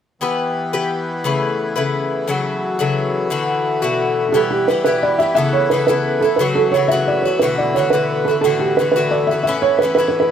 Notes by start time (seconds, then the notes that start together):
0.21 E3 B3 G4 B4
0.73 E3 B3 G4 B4
1.24 C#3 A3 E4 B4
1.76 C#3 A3 E4 B4
2.28 C#3 F#3 A3 F#4
2.79 C#3 F#3 A3 F#4
3.30 B2 D3 A3 F#4
3.82 B2 D3 A3 F#4
4.29 G4 A4
4.34 B2 E3 G3 B3 E4 G4
4.51 G4
4.68 B2 G3 E4 G4 B4
4.84 B2 G3 E4 G4 B4
5.03 D5
5.19 G3 E4 G4 E5
5.35 C#3 B3 E4 A4 E5
5.53 C#5
5.70 C#3 B3 E4 A4 B4
5.87 C#3 B3 E4 A4 B4
6.21 E4 A4
6.25 B3
6.36 C#3 F#3 B4
6.40 A3 F#4
6.55 A4
6.72 C#3 F#3 C#5
6.76 A3 F#4
6.88 F#4 E5
6.92 C#3 F#3 A3
7.08 D5
7.22 F#4 C#5
7.27 F#3 A3
7.39 B2 D3 A3 B4
7.44 F#4
7.58 D5
7.74 B2 D3 A3 C#5
7.79 F#4
7.90 D3 A3 F#4 B4
7.95 B2
8.25 F#4 A4
8.30 D3 A3
8.41 A2 D3 A3 B3 A4
8.45 E3 F#4
8.59 G4
8.77 A2 D3 A3 B4
8.81 F#4
8.92 B4
8.96 A2 D3 A3 F#4
9.11 D5
9.27 E5
9.31 D3 A3 F#4
9.43 E5
9.47 A2 E3 C#4 E4
9.62 C#5
9.79 A2 B4
9.83 E3 C#4 E4
9.95 E4 B4
9.99 A2 E3 C#4
10.08 B4
10.20 B4